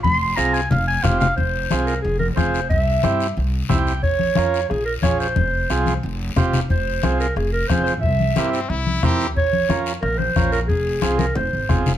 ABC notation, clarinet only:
X:1
M:4/4
L:1/8
Q:1/4=180
K:Fm
V:1 name="Clarinet"
c'2 b a f a f f | c3 B A B c2 | =e4 z4 | d4 A B d c- |
c4 z4 | c3 B A B c c | =e4 z4 | d3 z B c2 B |
A3 B c3 z |]